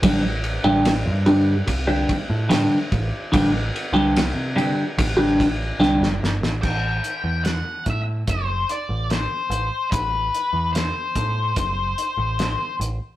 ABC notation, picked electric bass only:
X:1
M:4/4
L:1/16
Q:1/4=73
K:Ador
V:1 name="Picked electric bass" clef=bass
A,,,3 A,,,2 G,,3 C,,2 z A,,2 z A,,, z | A,,,2 z C,,2 C,2 z A,,,4 C,, F,,, G,,, A,,, | A,,,2 z E,,2 z A,,2 F,,,2 z A,,,2 z A,,, z | A,,,2 z E,,2 z A,,2 F,,,2 z A,,,2 z A,,, z |]